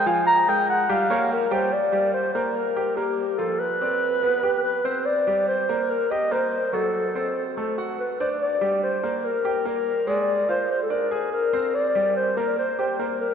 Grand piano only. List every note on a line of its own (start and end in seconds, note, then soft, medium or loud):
0.06 0.40 F3 medium
0.06 0.40 F4 medium
0.06 0.40 F5 medium
0.48 0.82 G#3 medium
0.48 0.82 G#4 medium
0.48 0.82 A#4 medium
0.89 1.06 G3 medium
0.89 1.06 G4 medium
0.89 1.07 G5 medium
1.10 1.44 A#3 medium
1.10 1.44 A#4 medium
1.10 1.45 C#5 medium
1.51 1.68 G3 medium
1.51 1.69 G4 medium
1.51 1.69 G5 medium
1.92 2.27 G3 medium
1.92 2.27 G4 medium
2.35 2.69 A#3 medium
2.35 2.69 A#4 medium
2.76 2.94 G4 medium
2.76 2.94 G5 medium
2.97 3.31 A#3 medium
2.97 3.32 A#4 medium
3.39 3.73 F3 medium
3.39 3.73 F4 medium
3.81 4.15 C4 medium
3.81 4.16 D5 medium
4.23 4.40 B3 medium
4.23 4.40 B4 medium
4.43 4.78 G4 medium
4.43 4.78 G5 medium
4.85 5.19 C4 medium
4.85 5.20 C5 medium
5.27 5.61 G3 medium
5.27 5.62 G4 medium
5.69 6.03 A#3 medium
5.69 6.03 A#4 medium
6.11 6.28 G4 medium
6.11 6.28 G5 medium
6.31 6.66 A#3 medium
6.31 6.66 A#4 medium
6.73 7.07 F#3 medium
6.73 7.07 F#4 medium
7.15 7.49 C4 medium
7.15 7.50 C5 medium
7.57 7.74 A3 medium
7.57 7.74 A4 medium
7.78 8.12 F#4 medium
7.78 8.12 F#5 medium
8.20 8.54 D4 medium
8.20 8.54 D5 medium
8.61 8.95 G3 medium
8.61 8.95 G4 medium
9.03 9.37 A#3 medium
9.03 9.37 A#4 medium
9.45 9.62 G4 medium
9.45 9.62 G5 medium
9.65 9.99 A#3 medium
9.65 10.00 A#4 medium
10.07 10.41 G#3 medium
10.07 10.41 G#4 medium
10.49 10.83 F4 medium
10.49 10.83 F5 medium
10.90 11.07 D4 medium
10.90 11.07 D5 medium
11.11 11.45 G#4 medium
11.11 11.46 G#5 medium
11.53 11.87 C4 medium
11.53 11.87 C5 medium
11.95 12.29 G3 medium
11.95 12.29 G4 medium
12.37 12.71 A#3 medium
12.37 12.71 A#4 medium
12.79 12.95 G4 medium
12.79 12.96 G5 medium
12.99 13.33 A#3 medium
12.99 13.33 A#4 medium